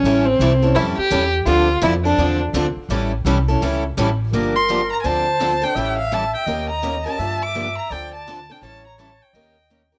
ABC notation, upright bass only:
X:1
M:4/4
L:1/8
Q:"Swing" 1/4=168
K:Dm
V:1 name="Upright bass" clef=bass
A,,,2 ^B,,,2 F,, z E,,2 | D,,2 F,,2 E,,2 D,, z | A,,,2 ^B,,,2 ^C,,2 A,,,2 | G,,,4 D,,4 |
A,,,4 _E,,4 | G,,4 D,,4 | A,,,4 _E,,4 |]